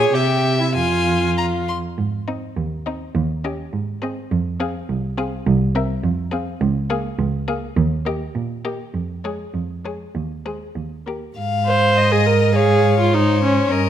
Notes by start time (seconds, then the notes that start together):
Already playing: C#5
0.00 G#4
0.13 C3 G4 E5 G5
0.59 E4 E5
0.75 F2 F4 F5 G#5
1.38 A#5
1.68 C6
1.98 G#2
2.28 C4 D#4 D#5
2.57 D#2
2.86 C4 D#4 D#5
3.15 D#2
3.44 C#4 G4 D#5
3.73 G#2
4.02 C4 G#4 D#5
4.32 F2
4.60 C4 G#4 F5
4.89 C2
5.17 C4 G#4 F5
5.47 C2
5.75 C4 A#4 E5
6.04 F2
6.32 C4 G#4 F5
6.61 C#2
6.90 A#3 G#4 F5
7.19 C#2
7.48 A#3 G#4 F5
7.77 D#2
8.06 A#3 G4 D#5
8.35 A#2
8.65 A#3 G4 D#5
8.94 F2
9.24 G#3 G#4 C#5
9.54 F2
9.84 G#3 G#4 C#5
10.15 D#2
10.45 G#3 G#4 C5
10.76 D#2
11.06 A#3 G4 A#4
11.37 G#2 F5
11.67 C5
11.96 D#5
12.12 G#4
12.26 A#4
12.55 G#4 C#5 F5
13.00 F4
13.13 D#4 C5 C#5
13.43 C#4
13.71 G2 A#4 D#5